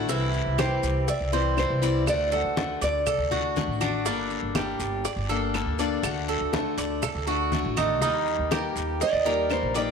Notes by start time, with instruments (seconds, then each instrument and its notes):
0.09 upright bass C2, steel-string acoustic guitar C3 E3 G3 C4 E4, cuban tres E4, high bongo, high conga, long guiro, maracas
0.34 high conga, maracas
0.46 upright bass C2
0.58 steel-string acoustic guitar E3 G3 C4 E4, cuban tres G4, nylon-string guitar C5, high bongo, high conga, short guiro, claves, maracas
0.83 upright bass C2, high bongo, high conga, short guiro, maracas
1.08 nylon-string guitar D5, cuban tres E5, muted steel-string acoustic guitar stroke, high bongo, high conga, long guiro, maracas
1.20 upright bass C2
1.32 steel-string acoustic guitar E3 G3 C4 E4, cuban tres C5, high bongo, high conga, maracas
1.57 steel-string acoustic guitar E3 G3 C4 E4, nylon-string guitar C5, high bongo, low bongo, high conga, short guiro, claves, maracas
1.70 upright bass C2
1.82 steel-string acoustic guitar E3 G3 C4 E4, cuban tres D5, high bongo, high conga, short guiro, maracas
2.06 upright bass D2, steel-string acoustic guitar D3 A3 D4 F#4, nylon-string guitar D5, high bongo, high conga, long guiro, claves, maracas
2.32 cuban tres A4, nylon-string guitar F#5, high conga, maracas
2.44 upright bass D2
2.56 steel-string acoustic guitar D3 A3 D4 F#4, high bongo, high conga, short guiro, maracas
2.81 upright bass D2, cuban tres D5, nylon-string guitar D5, high bongo, high conga, short guiro, maracas
3.06 cuban tres A4, muted steel-string acoustic guitar stroke, high bongo, high conga, low conga, long guiro, claves, maracas
3.18 upright bass D2
3.31 steel-string acoustic guitar A3 D4 F#4, cuban tres F#4, high bongo, high conga, low conga, maracas
3.56 steel-string acoustic guitar D3 A3 D4 F#4, high bongo, low bongo, high conga, short guiro, maracas
3.68 upright bass A1
3.81 steel-string acoustic guitar A3 D4 F#4, cuban tres D4, high bongo, high conga, short guiro, claves, maracas
4.05 upright bass G1, steel-string acoustic guitar D3 G3 A#3 D4 A4, cuban tres D4, high bongo, high conga, long guiro, maracas
4.30 high conga, maracas
4.43 upright bass G1
4.55 steel-string acoustic guitar G3 A#3 D4 A4, cuban tres G4, high bongo, high conga, short guiro, claves, maracas
4.79 upright bass G1, high bongo, high conga, short guiro, maracas
5.05 cuban tres D5, muted steel-string acoustic guitar stroke, high bongo, high conga, long guiro, maracas
5.16 upright bass G1
5.29 steel-string acoustic guitar G3 A#3 D4 A4, cuban tres A4, high bongo, high conga, maracas
5.54 steel-string acoustic guitar G3 A#3 D4 A4, high bongo, low bongo, high conga, short guiro, claves, maracas
5.66 upright bass D2
5.79 steel-string acoustic guitar G3 A#3 D4 A4, cuban tres D5, high bongo, high conga, short guiro, maracas
6.03 upright bass D2, steel-string acoustic guitar D3 A3 D4 F#4, high bongo, high conga, long guiro, claves, maracas
6.28 cuban tres A4, high conga, maracas
6.40 upright bass D2
6.53 steel-string acoustic guitar D3 A3 D4 F#4, high bongo, high conga, short guiro, maracas
6.77 upright bass D2, cuban tres D5, high bongo, high conga, short guiro, maracas
7.02 cuban tres A4, muted steel-string acoustic guitar stroke, high bongo, high conga, low conga, long guiro, claves, maracas
7.15 upright bass D2
7.27 steel-string acoustic guitar A3 D4 F#4, cuban tres F#4, high bongo, high conga, maracas
7.52 steel-string acoustic guitar D3 A3 D4 F#4, high bongo, low bongo, high conga, short guiro, maracas
7.65 upright bass A1
7.76 steel-string acoustic guitar A3 D4 F#4, cuban tres D#4, high bongo, high conga, short guiro, claves, maracas
8.02 upright bass D#2, steel-string acoustic guitar D#3 G3 A#3 D#4 G4, cuban tres D#4, high bongo, high conga, long guiro, maracas
8.27 high conga, maracas
8.39 upright bass D#2
8.51 steel-string acoustic guitar G3 A#3 D#4 G4, cuban tres G4, nylon-string guitar A#4, high bongo, high conga, short guiro, claves, maracas
8.76 upright bass D#2, high bongo, high conga, short guiro, maracas
9.00 nylon-string guitar D5, cuban tres D#5, muted steel-string acoustic guitar stroke, high bongo, high conga, long guiro, maracas
9.13 upright bass D#2
9.25 steel-string acoustic guitar G3 A#3 D#4 G4, cuban tres A#4, high bongo, high conga, maracas
9.49 steel-string acoustic guitar G3 A#3 D#4 G4, nylon-string guitar C5, high bongo, low bongo, high conga, short guiro, claves, maracas
9.62 upright bass A#1
9.74 steel-string acoustic guitar G3 A#3 D#4 G4, cuban tres D5, nylon-string guitar D5, high bongo, high conga, short guiro, maracas